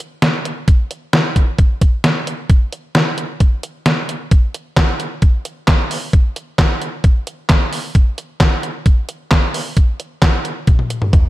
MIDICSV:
0, 0, Header, 1, 2, 480
1, 0, Start_track
1, 0, Tempo, 454545
1, 715, Time_signature, 4, 2, 24, 8
1, 11923, End_track
2, 0, Start_track
2, 0, Title_t, "Drums"
2, 0, Note_on_c, 9, 42, 86
2, 104, Note_off_c, 9, 42, 0
2, 234, Note_on_c, 9, 38, 106
2, 236, Note_on_c, 9, 42, 69
2, 340, Note_off_c, 9, 38, 0
2, 342, Note_off_c, 9, 42, 0
2, 479, Note_on_c, 9, 42, 78
2, 584, Note_off_c, 9, 42, 0
2, 715, Note_on_c, 9, 42, 76
2, 716, Note_on_c, 9, 36, 113
2, 821, Note_off_c, 9, 42, 0
2, 822, Note_off_c, 9, 36, 0
2, 958, Note_on_c, 9, 42, 70
2, 1064, Note_off_c, 9, 42, 0
2, 1195, Note_on_c, 9, 42, 70
2, 1196, Note_on_c, 9, 38, 110
2, 1300, Note_off_c, 9, 42, 0
2, 1302, Note_off_c, 9, 38, 0
2, 1435, Note_on_c, 9, 36, 81
2, 1437, Note_on_c, 9, 42, 67
2, 1541, Note_off_c, 9, 36, 0
2, 1542, Note_off_c, 9, 42, 0
2, 1674, Note_on_c, 9, 42, 71
2, 1675, Note_on_c, 9, 36, 91
2, 1779, Note_off_c, 9, 42, 0
2, 1781, Note_off_c, 9, 36, 0
2, 1917, Note_on_c, 9, 36, 86
2, 1917, Note_on_c, 9, 42, 86
2, 2022, Note_off_c, 9, 36, 0
2, 2022, Note_off_c, 9, 42, 0
2, 2154, Note_on_c, 9, 38, 105
2, 2156, Note_on_c, 9, 42, 70
2, 2260, Note_off_c, 9, 38, 0
2, 2262, Note_off_c, 9, 42, 0
2, 2399, Note_on_c, 9, 42, 81
2, 2505, Note_off_c, 9, 42, 0
2, 2635, Note_on_c, 9, 42, 76
2, 2636, Note_on_c, 9, 36, 110
2, 2741, Note_off_c, 9, 36, 0
2, 2741, Note_off_c, 9, 42, 0
2, 2878, Note_on_c, 9, 42, 71
2, 2983, Note_off_c, 9, 42, 0
2, 3114, Note_on_c, 9, 42, 72
2, 3115, Note_on_c, 9, 38, 111
2, 3219, Note_off_c, 9, 42, 0
2, 3221, Note_off_c, 9, 38, 0
2, 3356, Note_on_c, 9, 42, 68
2, 3461, Note_off_c, 9, 42, 0
2, 3594, Note_on_c, 9, 42, 70
2, 3595, Note_on_c, 9, 36, 91
2, 3699, Note_off_c, 9, 42, 0
2, 3701, Note_off_c, 9, 36, 0
2, 3837, Note_on_c, 9, 42, 85
2, 3943, Note_off_c, 9, 42, 0
2, 4074, Note_on_c, 9, 38, 104
2, 4076, Note_on_c, 9, 42, 69
2, 4180, Note_off_c, 9, 38, 0
2, 4181, Note_off_c, 9, 42, 0
2, 4319, Note_on_c, 9, 42, 78
2, 4424, Note_off_c, 9, 42, 0
2, 4555, Note_on_c, 9, 42, 78
2, 4556, Note_on_c, 9, 36, 116
2, 4661, Note_off_c, 9, 42, 0
2, 4662, Note_off_c, 9, 36, 0
2, 4799, Note_on_c, 9, 42, 74
2, 4904, Note_off_c, 9, 42, 0
2, 5034, Note_on_c, 9, 36, 125
2, 5035, Note_on_c, 9, 42, 74
2, 5037, Note_on_c, 9, 38, 119
2, 5037, Note_on_c, 9, 39, 96
2, 5140, Note_off_c, 9, 36, 0
2, 5141, Note_off_c, 9, 42, 0
2, 5142, Note_off_c, 9, 38, 0
2, 5142, Note_off_c, 9, 39, 0
2, 5277, Note_on_c, 9, 42, 71
2, 5383, Note_off_c, 9, 42, 0
2, 5513, Note_on_c, 9, 42, 75
2, 5515, Note_on_c, 9, 36, 117
2, 5618, Note_off_c, 9, 42, 0
2, 5621, Note_off_c, 9, 36, 0
2, 5757, Note_on_c, 9, 42, 91
2, 5862, Note_off_c, 9, 42, 0
2, 5994, Note_on_c, 9, 38, 109
2, 5994, Note_on_c, 9, 39, 92
2, 5996, Note_on_c, 9, 42, 70
2, 5998, Note_on_c, 9, 36, 124
2, 6100, Note_off_c, 9, 38, 0
2, 6100, Note_off_c, 9, 39, 0
2, 6102, Note_off_c, 9, 42, 0
2, 6104, Note_off_c, 9, 36, 0
2, 6240, Note_on_c, 9, 46, 85
2, 6346, Note_off_c, 9, 46, 0
2, 6477, Note_on_c, 9, 36, 117
2, 6477, Note_on_c, 9, 42, 78
2, 6582, Note_off_c, 9, 36, 0
2, 6582, Note_off_c, 9, 42, 0
2, 6718, Note_on_c, 9, 42, 73
2, 6824, Note_off_c, 9, 42, 0
2, 6955, Note_on_c, 9, 36, 121
2, 6955, Note_on_c, 9, 42, 77
2, 6956, Note_on_c, 9, 38, 120
2, 6956, Note_on_c, 9, 39, 98
2, 7060, Note_off_c, 9, 36, 0
2, 7060, Note_off_c, 9, 42, 0
2, 7062, Note_off_c, 9, 38, 0
2, 7062, Note_off_c, 9, 39, 0
2, 7197, Note_on_c, 9, 42, 75
2, 7303, Note_off_c, 9, 42, 0
2, 7434, Note_on_c, 9, 42, 76
2, 7435, Note_on_c, 9, 36, 120
2, 7539, Note_off_c, 9, 42, 0
2, 7541, Note_off_c, 9, 36, 0
2, 7677, Note_on_c, 9, 42, 91
2, 7783, Note_off_c, 9, 42, 0
2, 7913, Note_on_c, 9, 38, 111
2, 7913, Note_on_c, 9, 39, 90
2, 7915, Note_on_c, 9, 42, 74
2, 7918, Note_on_c, 9, 36, 126
2, 8019, Note_off_c, 9, 38, 0
2, 8019, Note_off_c, 9, 39, 0
2, 8021, Note_off_c, 9, 42, 0
2, 8023, Note_off_c, 9, 36, 0
2, 8158, Note_on_c, 9, 46, 87
2, 8264, Note_off_c, 9, 46, 0
2, 8395, Note_on_c, 9, 42, 80
2, 8396, Note_on_c, 9, 36, 118
2, 8501, Note_off_c, 9, 36, 0
2, 8501, Note_off_c, 9, 42, 0
2, 8638, Note_on_c, 9, 42, 77
2, 8743, Note_off_c, 9, 42, 0
2, 8874, Note_on_c, 9, 36, 122
2, 8874, Note_on_c, 9, 42, 75
2, 8875, Note_on_c, 9, 38, 121
2, 8875, Note_on_c, 9, 39, 96
2, 8979, Note_off_c, 9, 36, 0
2, 8979, Note_off_c, 9, 42, 0
2, 8981, Note_off_c, 9, 38, 0
2, 8981, Note_off_c, 9, 39, 0
2, 9116, Note_on_c, 9, 42, 72
2, 9222, Note_off_c, 9, 42, 0
2, 9354, Note_on_c, 9, 36, 117
2, 9354, Note_on_c, 9, 42, 73
2, 9459, Note_off_c, 9, 42, 0
2, 9460, Note_off_c, 9, 36, 0
2, 9595, Note_on_c, 9, 42, 91
2, 9701, Note_off_c, 9, 42, 0
2, 9834, Note_on_c, 9, 38, 110
2, 9834, Note_on_c, 9, 39, 96
2, 9835, Note_on_c, 9, 42, 75
2, 9837, Note_on_c, 9, 36, 119
2, 9939, Note_off_c, 9, 38, 0
2, 9939, Note_off_c, 9, 39, 0
2, 9941, Note_off_c, 9, 42, 0
2, 9943, Note_off_c, 9, 36, 0
2, 10078, Note_on_c, 9, 46, 86
2, 10183, Note_off_c, 9, 46, 0
2, 10313, Note_on_c, 9, 42, 82
2, 10314, Note_on_c, 9, 36, 112
2, 10419, Note_off_c, 9, 42, 0
2, 10420, Note_off_c, 9, 36, 0
2, 10557, Note_on_c, 9, 42, 76
2, 10662, Note_off_c, 9, 42, 0
2, 10793, Note_on_c, 9, 36, 120
2, 10793, Note_on_c, 9, 42, 77
2, 10794, Note_on_c, 9, 38, 114
2, 10794, Note_on_c, 9, 39, 101
2, 10898, Note_off_c, 9, 36, 0
2, 10898, Note_off_c, 9, 42, 0
2, 10900, Note_off_c, 9, 38, 0
2, 10900, Note_off_c, 9, 39, 0
2, 11035, Note_on_c, 9, 42, 71
2, 11140, Note_off_c, 9, 42, 0
2, 11271, Note_on_c, 9, 42, 74
2, 11273, Note_on_c, 9, 36, 122
2, 11273, Note_on_c, 9, 48, 63
2, 11376, Note_off_c, 9, 42, 0
2, 11378, Note_off_c, 9, 48, 0
2, 11379, Note_off_c, 9, 36, 0
2, 11394, Note_on_c, 9, 48, 59
2, 11499, Note_off_c, 9, 48, 0
2, 11513, Note_on_c, 9, 42, 90
2, 11619, Note_off_c, 9, 42, 0
2, 11634, Note_on_c, 9, 47, 73
2, 11739, Note_off_c, 9, 47, 0
2, 11754, Note_on_c, 9, 45, 95
2, 11755, Note_on_c, 9, 42, 71
2, 11756, Note_on_c, 9, 36, 121
2, 11860, Note_off_c, 9, 42, 0
2, 11860, Note_off_c, 9, 45, 0
2, 11862, Note_off_c, 9, 36, 0
2, 11923, End_track
0, 0, End_of_file